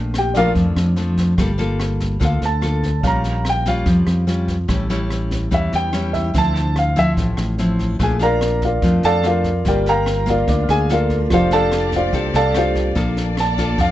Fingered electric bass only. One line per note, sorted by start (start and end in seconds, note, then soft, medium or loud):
0.00 0.51 A#1 medium
0.56 0.75 F2 medium
0.76 1.35 F2 loud
1.38 2.17 G1 loud
2.21 2.40 D2 medium
2.42 3.00 D2 medium
3.03 3.82 A#1 medium
3.86 4.06 F2 medium
4.07 4.65 F2 medium
4.69 5.48 A1 loud
5.52 5.71 E2 medium
5.73 6.31 E2 medium
6.35 7.13 D2 loud
7.17 7.36 A1 medium
7.38 7.96 A1 medium
8.00 8.78 A#1 medium
8.82 9.02 F2 medium
9.04 9.62 F2 medium
9.65 10.44 G1 medium
10.48 10.67 D2 medium
10.69 11.27 D2 medium
11.31 12.09 F1 medium
12.13 12.32 C2 medium
12.34 12.92 C2 medium
12.96 13.75 A#1 loud
13.79 13.91 F2 medium